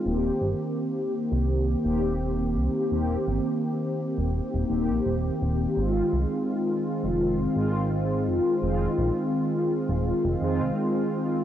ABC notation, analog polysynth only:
X:1
M:4/4
L:1/8
Q:"Swing 16ths" 1/4=84
K:Ebmix
V:1 name="Analog polysynth"
[E,B,CG]4- [E,B,CG] [E,B,CG]3 | [E,B,CG]4- [E,B,CG] [E,B,CG]3 | [E,A,CF]4- [E,A,CF] [E,A,CF]3 | [E,A,CF]4- [E,A,CF] [E,A,CF]3 |]